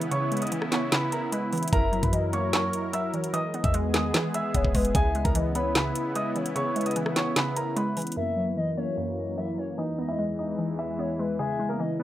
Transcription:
Already playing: synth pluck C#3 E3 G#3 B3, analog synth pad C#3 B3 E4
0.01 closed hi-hat
0.11 synth pluck C#3, grand piano C#5 C#6, closed hi-hat
0.32 synth pluck G#3, closed hi-hat
0.37 closed hi-hat
0.42 grand piano D#5 D#6, closed hi-hat
0.47 closed hi-hat
0.52 synth pluck E3, closed hi-hat
0.62 cross-stick
0.72 synth pluck B3, grand piano C#5 C#6, snare, clap, closed hi-hat
0.92 synth pluck C#3, grand piano B4 B5, snare, clap, closed hi-hat
1.12 grand piano A#4 A#5, closed hi-hat
1.32 synth pluck G#3, grand piano B4 B5, closed hi-hat
1.53 synth pluck E3, closed hi-hat, open hi-hat
1.58 closed hi-hat
1.63 closed hi-hat
1.68 closed hi-hat
1.73 808-style bass F#1, synth pluck F#2, analog synth pad F#3 A#4, grand piano A#4 A#5, soft synth lead E5, kick, closed hi-hat
1.92 synth pluck F#3, closed hi-hat
2.03 808-style bass F#2, grand piano B4 B5, kick, closed hi-hat
2.13 synth pluck E3, soft synth lead D#5, closed hi-hat
2.33 synth pluck A#3, soft synth lead C#5, grand piano C#5 C#6, closed hi-hat
2.53 synth pluck F#2, grand piano C#5 C#6, snare, clap, closed hi-hat
2.73 closed hi-hat
2.93 synth pluck F#3, soft synth lead E5, grand piano E5 E6, closed hi-hat
3.14 synth pluck E3, soft synth lead C#5, closed hi-hat
3.24 closed hi-hat
3.33 synth pluck E3, analog synth pad G#3 B3 G#4, grand piano D#5 D#6, closed hi-hat
3.54 synth pluck B3, soft synth lead D#5, closed hi-hat
3.64 808-style bass E2, grand piano E5 E6, kick, closed hi-hat
3.74 synth pluck G#3, closed hi-hat
3.94 synth pluck D#3, grand piano D#5 D#6, cross-stick, snare, clap, closed hi-hat
4.14 synth pluck E3, snare, clap, closed hi-hat
4.34 grand piano E5 E6, closed hi-hat
4.54 808-style bass E1, synth pluck B3, soft synth lead C#5, kick, closed hi-hat
4.65 808-style bass E1, kick
4.75 808-style bass E1, synth pluck G#3, soft synth lead B4, kick, closed hi-hat, open hi-hat
4.85 closed hi-hat
4.95 808-style bass C#2, analog synth pad C#3 B3 E4, synth pluck C#3, grand piano G#4 G#5, soft synth lead E5, kick, closed hi-hat
5.15 synth pluck G#3, closed hi-hat
5.25 808-style bass C#2, grand piano A#4 A#5, kick, closed hi-hat
5.35 synth pluck E3, soft synth lead D#5, closed hi-hat
5.55 synth pluck B3, grand piano B4 B5, soft synth lead C#5, closed hi-hat
5.75 synth pluck C#3, grand piano B4 B5, snare, clap, closed hi-hat
5.95 closed hi-hat
6.15 synth pluck G#3, grand piano D#5 D#6, soft synth lead E5, closed hi-hat
6.36 synth pluck E3, soft synth lead C#5, closed hi-hat
6.46 closed hi-hat
6.56 synth pluck C#3, grand piano C#5 C#6, closed hi-hat
6.76 synth pluck G#3, soft synth lead B4, closed hi-hat
6.81 closed hi-hat
6.86 grand piano D#5 D#6, closed hi-hat
6.91 closed hi-hat
6.96 synth pluck E3, closed hi-hat
7.06 cross-stick
7.16 synth pluck B3, grand piano C#5 C#6, snare, clap, closed hi-hat
7.36 synth pluck C#3, grand piano B4 B5, snare, clap, closed hi-hat
7.56 grand piano A#4 A#5, closed hi-hat
7.76 synth pluck G#3, grand piano B4 B5, closed hi-hat
7.97 synth pluck E3, closed hi-hat, open hi-hat
8.02 closed hi-hat
8.07 closed hi-hat
8.12 closed hi-hat
8.17 synth pluck F#2, analog synth pad F#2 E3 A#3, grand piano A#3 A#4, soft synth lead E5
8.37 synth pluck F#3
8.47 grand piano B3 B4
8.57 synth pluck E3, soft synth lead D#5
8.77 synth pluck A#3, grand piano C#4 C#5, soft synth lead C#5
8.97 synth pluck F#2, grand piano C#4 C#5
9.38 synth pluck F#3, grand piano E4 E5, soft synth lead E5
9.58 synth pluck E3, soft synth lead C#5
9.78 analog synth pad E2 E3 G#3, synth pluck E3, grand piano D#4 D#5
9.98 synth pluck B3, soft synth lead D#5
10.09 grand piano E4 E5
10.18 synth pluck G#3
10.39 grand piano D#4 D#5
10.59 synth pluck E3
10.79 grand piano E4 E5
10.99 synth pluck B3, soft synth lead C#5
11.19 synth pluck G#3, soft synth lead B4
11.39 analog synth pad C#3 B3 E4, synth pluck C#3, grand piano G#3 G#4, soft synth lead E5
11.59 synth pluck G#3
11.69 grand piano A#3 A#4
11.79 synth pluck E3, soft synth lead D#5
11.99 synth pluck B3, grand piano B4, soft synth lead C#5

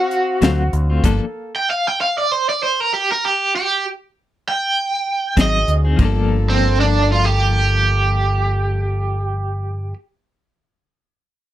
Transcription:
Already playing: horn section C4 F#4 F5, overdriven electric guitar F#4
0.11 closed hi-hat
0.41 fingered electric bass D2, clean electric guitar F#3 A3 C4 F4, snare, closed hi-hat
0.73 fingered electric bass D2, closed hi-hat
0.90 clean electric guitar A3 C4 F4
1.04 fingered electric bass G1, clean electric guitar F3 A#3 D4 A4, horn section A#3 A4, kick, closed hi-hat, crash
1.56 overdriven electric guitar G5
1.70 overdriven electric guitar F5
1.87 overdriven electric guitar G5
2.01 overdriven electric guitar F5
2.18 overdriven electric guitar D5
2.32 overdriven electric guitar C5
2.49 overdriven electric guitar D5
2.63 overdriven electric guitar C5
2.80 overdriven electric guitar A#4
2.94 overdriven electric guitar G4
3.12 overdriven electric guitar A#4
3.25 overdriven electric guitar G4
3.56 overdriven electric guitar G4
4.48 overdriven electric guitar G5
5.36 fingered electric bass G#1, clean electric guitar F#3 C4 D#4 G#4, horn section C4 F#4 G#4, kick, snare, closed hi-hat
5.41 overdriven electric guitar D#5
5.68 fingered electric bass D2, closed hi-hat
5.85 clean electric guitar C4 D#4 G#4
5.96 fingered electric bass G1, clean electric guitar F3 A#3, horn section A#3 F4 A4, kick, crash
6.02 clean electric guitar D4 A4
6.50 overdriven electric guitar C4
6.80 overdriven electric guitar D4
7.12 overdriven electric guitar F4
7.25 overdriven electric guitar G4

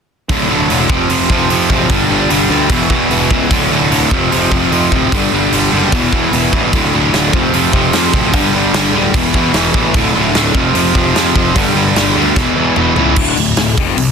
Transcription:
0.29 picked electric bass D1, distorted electric guitar D2 A2 D3, kick, open hi-hat
0.48 picked electric bass D1, distorted electric guitar D2 A2 D3
0.69 picked electric bass E1, distorted electric guitar D2 A2 D3, open hi-hat
0.90 picked electric bass F1, distorted electric guitar F2 C3 F3, kick
1.09 picked electric bass F1, distorted electric guitar F2 C3 F3, open hi-hat
1.30 picked electric bass F1, distorted electric guitar F2 C3 F3, kick
1.49 picked electric bass F2, distorted electric guitar F2 C3 F3, open hi-hat
1.70 picked electric bass D1, distorted electric guitar F2 C3 F3, kick
1.90 picked electric bass G1, distorted electric guitar G2 D3 G3, kick, open hi-hat
2.10 picked electric bass G1, distorted electric guitar G2 D3 G3
2.29 picked electric bass G1, distorted electric guitar G2 D3 G3, open hi-hat
2.49 picked electric bass D2, distorted electric guitar G2 D3 G3
2.70 picked electric bass E1, distorted electric guitar E2 B2 E3, kick, open hi-hat
2.90 picked electric bass E2, distorted electric guitar E2 B2 E3, kick
3.10 picked electric bass E1, distorted electric guitar E2 B2 E3, open hi-hat
3.30 picked electric bass C#2, distorted electric guitar E2 B2 E3, kick
3.50 picked electric bass D1, distorted electric guitar D2 A2 D3, kick, open hi-hat
3.70 picked electric bass D1, distorted electric guitar D2 A2 D3
3.90 picked electric bass D1, distorted electric guitar D2 A2 D3, open hi-hat
4.11 picked electric bass F1, distorted electric guitar F2 C3 F3, kick
4.31 picked electric bass F1, distorted electric guitar F2 C3 F3, open hi-hat
4.51 picked electric bass F1, distorted electric guitar F2 C3 F3, kick
4.71 picked electric bass F2, distorted electric guitar F2 C3 F3, open hi-hat
4.91 picked electric bass D1, distorted electric guitar F2 C3 F3, kick
5.12 picked electric bass G1, distorted electric guitar G2 D3 G3, kick, open hi-hat
5.32 picked electric bass G1, distorted electric guitar G2 D3 G3
5.52 picked electric bass G1, distorted electric guitar G2 D3 G3, open hi-hat
5.71 picked electric bass F#1, distorted electric guitar G2 D3 G3
5.92 picked electric bass E1, distorted electric guitar E2 B2 E3, kick, open hi-hat
6.12 picked electric bass E2, distorted electric guitar E2 B2 E3, kick
6.32 picked electric bass E1, distorted electric guitar E2 B2 E3, open hi-hat
6.53 picked electric bass A1, distorted electric guitar E2 B2 E3, kick
6.73 picked electric bass D1, distorted electric guitar D2 A2 D3, kick, open hi-hat
6.93 picked electric bass D1, distorted electric guitar D2 A2 D3
7.12 picked electric bass D1, distorted electric guitar D2 A2 D3, snare, open hi-hat
7.32 picked electric bass F1, distorted electric guitar F2 C3 F3, kick
7.53 picked electric bass F1, distorted electric guitar F2 C3 F3, open hi-hat
7.73 picked electric bass F1, distorted electric guitar F2 C3 F3, kick
7.92 distorted electric guitar F2 C3 F3, picked electric bass F2, snare, open hi-hat
8.13 picked electric bass D1, distorted electric guitar F2 C3 F3, kick
8.33 picked electric bass G1, distorted electric guitar G2 D3 G3, kick, open hi-hat
8.52 picked electric bass G1, distorted electric guitar G2 D3 G3
8.73 picked electric bass G1, distorted electric guitar G2 D3 G3, snare, open hi-hat
8.93 picked electric bass D1, distorted electric guitar G2 D3 G3
9.14 picked electric bass E1, distorted electric guitar E2 B2 E3, kick, open hi-hat
9.34 picked electric bass E2, distorted electric guitar E2 B2 E3, kick
9.53 picked electric bass E1, distorted electric guitar E2 B2 E3, snare, open hi-hat
9.74 picked electric bass A1, distorted electric guitar E2 B2 E3, kick
9.94 picked electric bass D1, distorted electric guitar D2 A2 D3, kick, open hi-hat
10.13 picked electric bass D1, distorted electric guitar D2 A2 D3
10.34 picked electric bass D1, distorted electric guitar D2 A2 D3, snare, open hi-hat
10.53 picked electric bass F1, distorted electric guitar F2 C3 F3, kick
10.73 picked electric bass F1, distorted electric guitar F2 C3 F3, open hi-hat
10.93 picked electric bass F1, distorted electric guitar F2 C3 F3, kick
11.13 picked electric bass F2, distorted electric guitar F2 C3 F3, snare, open hi-hat
11.34 picked electric bass F1, distorted electric guitar F2 C3 F3, kick
11.54 picked electric bass G1, distorted electric guitar G2 D3 G3, kick, open hi-hat
11.75 picked electric bass G1, distorted electric guitar G2 D3 G3
11.95 picked electric bass G1, distorted electric guitar G2 D3 G3, snare, open hi-hat
12.15 picked electric bass D2, distorted electric guitar G2 D3 G3
12.35 picked electric bass E1, distorted electric guitar E2 B2 E3, kick, snare
12.56 distorted electric guitar E2 B2 E3, picked electric bass E2
12.76 picked electric bass E1, distorted electric guitar E2 B2 E3, mid tom
12.96 picked electric bass C#2, distorted electric guitar E2 B2 E3, floor tom
13.16 picked electric bass D1, distorted electric guitar D2 A2 D3, kick, crash
13.36 picked electric bass D1, distorted electric guitar D2 A2, open hi-hat
13.57 picked electric bass D1, distorted electric guitar D2 A2, snare, open hi-hat
13.77 picked electric bass F1, distorted electric guitar F2 C3 F3, kick
13.97 picked electric bass C2, distorted electric guitar F2 C3, open hi-hat

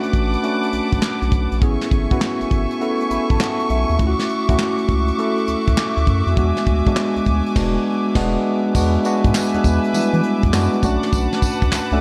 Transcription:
Already playing: tine electric piano A3 C#4 D4 F#4, string section B4 F#5 A5 D6
0.03 closed hi-hat
0.13 analog synth bass A1, kick, closed hi-hat
0.33 closed hi-hat
0.43 tine electric piano A3 C#4 D4 F#4, closed hi-hat
0.63 closed hi-hat
0.73 analog synth bass B1, closed hi-hat
0.92 analog synth bass B1, kick, closed hi-hat
1.02 snare, clap
1.22 analog synth bass B1, closed hi-hat
1.32 analog synth bass B1, kick, closed hi-hat
1.52 analog synth bass A#1, closed hi-hat
1.61 analog synth bass A1, string section A3 E5 G#5 C#6, tine electric piano B3 C#4 E4 G#4, kick, closed hi-hat
1.81 snare, closed hi-hat
1.91 analog synth bass G#1, kick, closed hi-hat
2.11 tine electric piano B3 C#4 E4 F#4, kick, closed hi-hat
2.21 snare, clap
2.41 analog synth bass G#1, closed hi-hat
2.51 analog synth bass G#1, kick, closed hi-hat
2.71 closed hi-hat
2.81 tine electric piano B3 C#4 E4 A4, closed hi-hat
3.01 closed hi-hat
3.10 analog synth bass A1, tine electric piano B5, closed hi-hat
3.30 analog synth bass A1, tine electric piano A5, kick, closed hi-hat
3.40 tine electric piano F#5, snare, clap
3.60 closed hi-hat
3.70 analog synth bass B1, tine electric piano E5, closed hi-hat
3.89 analog synth bass D#2, closed hi-hat
3.99 analog synth bass D2, tine electric piano A3 C#4 E4 F4, string section F#4 E5 D6, kick, closed hi-hat
4.07 tine electric piano F#4
4.19 snare, closed hi-hat
4.29 closed hi-hat
4.48 analog synth bass D2, tine electric piano A3 C#4 E4 F#4, kick, closed hi-hat
4.59 snare, clap
4.78 closed hi-hat
4.88 analog synth bass C#2, kick, closed hi-hat
5.08 closed hi-hat
5.18 tine electric piano A3 C#4 E4 A4, closed hi-hat
5.38 closed hi-hat
5.48 analog synth bass D2, closed hi-hat
5.68 analog synth bass D2, kick, closed hi-hat
5.77 snare, clap
5.97 analog synth bass D2, closed hi-hat
6.07 analog synth bass F#2, kick, closed hi-hat
6.27 analog synth bass F2, closed hi-hat
6.37 analog synth bass E2, tine electric piano G#3 B3 D4 F#4, string section G#5, kick, closed hi-hat
6.57 snare, closed hi-hat
6.67 analog synth bass D2, kick, closed hi-hat
6.87 tine electric piano G#3 B3 D4 F#4, kick, closed hi-hat
6.96 snare, clap
7.16 analog synth bass D2, closed hi-hat
7.26 analog synth bass D2, kick, closed hi-hat
7.46 closed hi-hat
7.56 analog synth bass E1, tine electric piano G#3 B3 D4 F#4, kick, snare, crash
8.15 analog synth bass E1, tine electric piano G#3 B3 D4 F#4, kick, snare, crash
8.75 analog synth bass E2, tine electric piano G#3 B3 D4 F#4, string section B4 E5 G#5 D6, kick, crash, tambourine
8.95 closed hi-hat
9.05 tine electric piano G#3 B3 D4 F#4, closed hi-hat, tambourine
9.24 analog synth bass G#2, kick, closed hi-hat
9.34 snare, clap, tambourine
9.54 analog synth bass E2, tine electric piano G#3 B3 D4 G#4, closed hi-hat
9.64 analog synth bass E2, kick, closed hi-hat, tambourine
9.84 closed hi-hat
9.94 analog synth bass E3, tine electric piano G3 B3 D4 E4, closed hi-hat, tambourine
10.01 tine electric piano G#3
10.13 analog synth bass E3, closed hi-hat
10.24 closed hi-hat
10.43 analog synth bass E2, kick, closed hi-hat
10.53 analog synth bass F#2, tine electric piano G#3 B3 D4 F#4, snare, clap, tambourine
10.73 closed hi-hat
10.82 analog synth bass B1, tine electric piano A3 C#4 D4 F#4, string section B4 F#5 A5, kick, closed hi-hat, tambourine
11.03 snare, closed hi-hat
11.13 analog synth bass B1, kick, closed hi-hat, tambourine
11.32 snare, closed hi-hat
11.42 kick, closed hi-hat, tambourine
11.62 analog synth bass D2, kick, closed hi-hat
11.72 analog synth bass C#2, snare, clap, tambourine
11.92 analog synth bass C#2, tine electric piano A3 C#4 D4 A4, closed hi-hat

